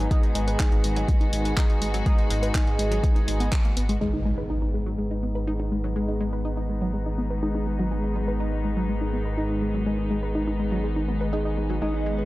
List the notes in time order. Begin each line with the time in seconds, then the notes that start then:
Already playing: G#2 D#3 B3
0.11 G#3 D#4 F#4 G#4, kick, closed hi-hat
0.23 D#4, closed hi-hat
0.35 G#1 G#3, open hi-hat
0.48 B4, closed hi-hat
0.60 D#4, kick, clap, closed hi-hat
0.72 G#1 D#4, closed hi-hat
0.84 G#1 G#3, open hi-hat
0.96 F#3, closed hi-hat
1.08 G#3, kick, closed hi-hat
1.21 D#4, closed hi-hat
1.33 G#1 B3, open hi-hat
1.45 B4, closed hi-hat
1.57 G#3 D#4 G#4, kick, clap, closed hi-hat
1.70 D#4, closed hi-hat
1.82 G#1 G#3, open hi-hat
1.94 F#3, closed hi-hat
2.06 G#3 D#4 G#4, kick, closed hi-hat
2.18 D#4, closed hi-hat
2.30 G#1 G#3, open hi-hat
2.43 B4, closed hi-hat
2.55 D#4, kick, clap, closed hi-hat
2.67 G#1 D#4, closed hi-hat
2.79 G#1 G#3, open hi-hat
2.91 F#3, closed hi-hat
3.03 G#3, kick, closed hi-hat
3.16 D#4, closed hi-hat
3.28 G#1 G#3, open hi-hat
3.40 B3, closed hi-hat
3.52 D#4, kick, clap, open hi-hat
3.65 A#3, closed hi-hat
3.77 G#1 B3, open hi-hat
3.89 G#3, closed hi-hat
4.01 G#1 G#2 D#3 G#3 B3 D#4 G#4, impact
4.13 D#4
4.26 G#3
4.38 B4
4.50 D#4
4.62 D#4
4.74 G#3
4.86 F#3
4.98 G#3
5.11 D#4
5.23 B3
5.35 B4
5.47 G#3 D#4 G#4
5.60 D#4
5.72 G#3
5.84 F#3
5.96 G#3 D#4 G#4
6.08 D#4
6.21 G#3
6.33 B4
6.45 D#4
6.57 D#4
6.69 G#3
6.82 F#3
6.94 G#3
7.06 D#4
7.18 B3
7.30 B4
7.43 G#3 D#4 G#4
7.55 D#4
7.67 G#3
7.79 F#3
7.91 G#3 D#4 G#4
8.04 D#4
8.16 G#3
8.28 B4
8.40 D#4
8.52 D#4
8.65 G#3
8.77 F#3
8.89 G#3
9.01 D#4
9.13 B3
9.26 B4
9.38 G#3 D#4 G#4
9.50 D#4
9.62 G#3
9.74 F#3
9.86 G#3 D#4 G#4
9.99 D#4
10.11 G#3
10.23 B4
10.35 D#4
10.48 D#4
10.60 G#3
10.72 F#3
10.84 G#3
10.96 D#4
11.08 B3
11.21 B4
11.33 G#3 D#4 G#4
11.45 D#4
11.57 G#3
11.70 F#3
11.82 G#1 G#3 C#4 D#4 G#4
11.94 D#4
12.06 G#3
12.18 B4